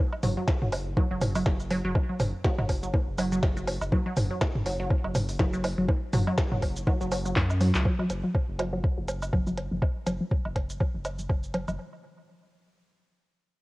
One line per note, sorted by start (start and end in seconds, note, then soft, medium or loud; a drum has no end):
0.12 high woodblock medium
0.23 0.35 F#1 loud
0.23 0.29 F#3 loud
0.23 mid tom medium
0.23 open hi-hat medium
0.23 low woodblock soft
0.23 shaker soft
0.37 0.41 F#3 loud
0.48 kick loud
0.48 snare loud
0.48 high bongo soft
0.48 low woodblock medium
0.62 0.94 F#1 loud
0.62 0.66 F#3 medium
0.62 mid tom medium
0.72 open hi-hat medium
0.72 high woodblock medium
0.72 low woodblock medium
0.97 1.02 F#3 loud
0.97 kick loud
0.97 high bongo medium
0.97 low woodblock soft
1.11 1.43 F#1 medium
1.11 1.15 F#3 loud
1.21 mid tom medium
1.21 open hi-hat medium
1.21 low woodblock medium
1.21 shaker soft
1.35 1.40 F#3 medium
1.35 open hi-hat soft
1.35 high woodblock medium
1.35 shaker soft
1.46 1.81 F#1 medium
1.46 kick loud
1.46 snare medium
1.46 high bongo medium
1.46 low woodblock medium
1.60 shaker soft
1.71 1.76 F#3 loud
1.71 open hi-hat medium
1.71 low woodblock soft
1.85 1.93 F#1 loud
1.85 1.89 F#3 loud
1.95 kick loud
1.95 high bongo soft
1.95 high woodblock medium
1.95 low woodblock medium
2.09 2.13 F#3 medium
2.20 2.31 F#1 loud
2.20 mid tom medium
2.20 open hi-hat loud
2.20 low woodblock medium
2.20 shaker soft
2.44 2.50 F#3 loud
2.44 kick loud
2.44 snare medium
2.44 high bongo medium
2.44 low woodblock soft
2.58 2.91 F#1 loud
2.58 2.63 F#3 loud
2.58 mid tom medium
2.58 high woodblock medium
2.69 kick medium
2.69 open hi-hat medium
2.69 low woodblock medium
2.83 2.87 F#3 medium
2.83 shaker soft
2.94 kick loud
2.94 high bongo medium
2.94 low woodblock medium
3.08 3.40 F#1 loud
3.18 3.24 F#3 loud
3.18 open hi-hat loud
3.18 high woodblock medium
3.18 low woodblock soft
3.18 shaker soft
3.32 3.36 F#3 loud
3.32 shaker soft
3.43 3.78 F#1 medium
3.43 kick loud
3.43 snare medium
3.43 high bongo soft
3.43 low woodblock medium
3.57 3.61 F#3 medium
3.57 shaker soft
3.67 open hi-hat medium
3.67 low woodblock medium
3.81 3.90 F#1 loud
3.81 high woodblock medium
3.81 shaker soft
3.92 3.98 F#3 loud
3.92 kick loud
3.92 high bongo medium
3.92 low woodblock soft
4.06 4.10 F#3 loud
4.16 4.28 F#1 loud
4.16 mid tom medium
4.16 open hi-hat medium
4.16 low woodblock medium
4.16 shaker soft
4.31 4.35 F#3 medium
4.41 kick loud
4.41 snare loud
4.41 high bongo medium
4.41 high woodblock medium
4.41 low woodblock medium
4.55 4.87 F#1 loud
4.55 mid tom medium
4.66 4.71 F#3 medium
4.66 open hi-hat medium
4.66 low woodblock soft
4.80 4.84 F#3 loud
4.90 kick loud
4.90 high bongo soft
4.90 low woodblock medium
5.04 5.37 F#1 loud
5.04 5.08 F#3 medium
5.04 high woodblock medium
5.15 mid tom medium
5.15 open hi-hat medium
5.15 low woodblock medium
5.15 shaker soft
5.29 open hi-hat medium
5.29 shaker soft
5.39 5.74 F#1 medium
5.39 5.45 F#3 loud
5.39 kick loud
5.39 snare medium
5.39 high bongo medium
5.39 low woodblock soft
5.53 5.58 F#3 loud
5.53 shaker soft
5.64 open hi-hat medium
5.64 high woodblock medium
5.64 low woodblock medium
5.78 5.87 F#1 loud
5.78 5.82 F#3 medium
5.89 kick loud
5.89 high bongo medium
5.89 low woodblock medium
6.13 6.25 F#1 loud
6.13 6.19 F#3 loud
6.13 mid tom medium
6.13 open hi-hat medium
6.13 low woodblock soft
6.13 shaker soft
6.27 6.31 F#3 loud
6.27 high woodblock medium
6.38 kick loud
6.38 snare loud
6.38 high bongo soft
6.38 low woodblock medium
6.52 6.84 F#1 loud
6.52 6.56 F#3 medium
6.52 mid tom medium
6.62 kick medium
6.62 open hi-hat medium
6.62 low woodblock medium
6.76 shaker medium
6.87 6.93 F#3 loud
6.87 kick loud
6.87 high bongo medium
6.87 high woodblock medium
6.87 low woodblock soft
7.01 7.33 F#1 loud
7.01 7.05 F#3 loud
7.01 shaker soft
7.12 7.17 F#3 medium
7.12 open hi-hat medium
7.12 low woodblock medium
7.12 shaker soft
7.26 7.30 F#3 medium
7.26 shaker soft
7.36 7.71 F#2 medium
7.36 7.40 C#4 medium
7.36 kick loud
7.36 clap loud
7.36 high bongo medium
7.36 low woodblock medium
7.50 high woodblock medium
7.50 shaker soft
7.61 7.66 F#3 loud
7.61 open hi-hat medium
7.61 low woodblock soft
7.61 shaker soft
7.75 7.84 C#2 loud
7.75 clap medium
7.75 shaker soft
7.85 7.91 F#3 loud
7.85 kick loud
7.85 low woodblock medium
7.99 8.03 F#3 loud
7.99 high woodblock medium
8.10 8.22 F#1 loud
8.10 closed hi-hat loud
8.10 low woodblock soft
8.10 shaker soft
8.24 8.28 F#3 medium
8.35 kick loud
8.35 low woodblock medium
8.49 8.81 F#1 loud
8.59 8.65 F#3 loud
8.59 closed hi-hat medium
8.59 high woodblock medium
8.59 low woodblock medium
8.73 8.77 F#3 loud
8.84 kick loud
8.84 low woodblock soft
8.98 9.30 F#1 medium
8.98 9.02 F#3 medium
9.08 closed hi-hat medium
9.08 low woodblock medium
9.08 shaker soft
9.22 high woodblock medium
9.22 shaker soft
9.33 9.68 F#1 medium
9.33 9.38 F#3 loud
9.33 kick loud
9.33 low woodblock medium
9.47 9.51 F#3 loud
9.47 shaker soft
9.57 closed hi-hat medium
9.57 low woodblock soft
9.71 9.80 F#1 medium
9.71 9.76 F#3 medium
9.82 kick loud
9.82 high woodblock medium
9.82 low woodblock medium
10.06 10.18 F#1 medium
10.06 10.12 F#3 loud
10.06 closed hi-hat loud
10.06 low woodblock medium
10.06 shaker soft
10.21 10.25 F#3 loud
10.31 kick loud
10.31 low woodblock soft
10.45 10.78 F#1 medium
10.45 10.49 F#3 medium
10.45 high woodblock medium
10.56 kick medium
10.56 closed hi-hat medium
10.56 low woodblock medium
10.70 shaker soft
10.80 10.86 F#3 loud
10.80 kick loud
10.80 low woodblock medium
10.94 11.27 F#1 medium
10.94 10.99 F#3 loud
11.05 closed hi-hat medium
11.05 high woodblock medium
11.05 low woodblock soft
11.05 shaker soft
11.19 11.23 F#3 medium
11.19 shaker soft
11.30 11.65 F#1 medium
11.30 kick loud
11.30 low woodblock medium
11.44 shaker soft
11.54 11.60 F#3 loud
11.54 closed hi-hat medium
11.54 low woodblock medium
11.68 11.77 F#1 medium
11.68 11.72 F#3 loud
11.68 high woodblock medium
11.68 shaker soft